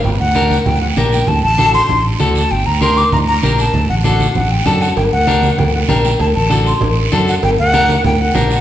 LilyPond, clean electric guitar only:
\new Staff \with { instrumentName = "Clean electric guitar" } { \time 4/4 \key g \minor \tempo 4 = 195 r4 <d' g' bes'>8 r4. <d' g' bes'>8 r8 | r4 <d' fis' a'>8 r4. <d' fis' a'>8 r8 | r4 <d' g' bes'>8 r4. <d' g' bes'>8 r8 | r4 <d' fis' a'>8 r4. <d' fis' a'>8 r8 |
r4 <d' g' bes'>8 r4. <d' g' bes'>8 r8 | r4 <d' fis' a'>8 r4. <d' fis' a'>8 r8 | r4 <d' g' bes'>8 r4. <d' g' bes'>8 r8 | }